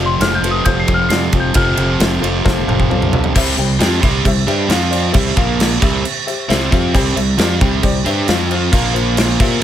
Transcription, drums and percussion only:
0.21 snare, ride
0.44 ride
0.65 kick, ride
0.88 kick, ride
1.10 snare, ride
1.33 kick, ride
1.54 kick, ride
1.77 ride
2.00 snare, ride
2.24 ride
2.46 kick, snare
2.58 high tom
2.69 mid tom
2.80 kick
2.91 mid tom
3.02 mid tom
3.13 floor tom
3.24 floor tom
3.36 kick, crash
3.58 crash
3.80 snare, crash
4.03 kick, crash
4.25 kick, crash
4.48 crash
4.70 snare, crash
4.93 crash
5.14 kick, crash
5.37 kick, crash
5.60 snare, crash
5.82 kick, crash
6.05 crash
6.28 crash
6.50 snare, crash
6.72 kick, crash
6.95 kick, crash
7.17 crash
7.38 snare, crash
7.61 kick, crash
7.83 kick, crash
8.06 crash
8.28 snare, crash
8.51 crash
8.73 kick, crash
8.96 crash
9.17 snare, crash
9.40 kick, crash

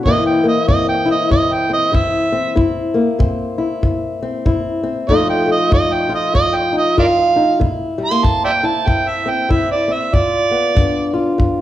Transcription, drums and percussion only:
0.06 kick
0.69 kick
1.31 kick
1.95 kick
2.57 kick
3.20 kick
3.83 kick
4.46 kick
5.09 kick
5.72 kick
6.35 kick
6.98 kick
7.61 kick
8.24 kick
8.88 kick
9.51 kick
10.14 kick
10.77 kick
11.40 kick

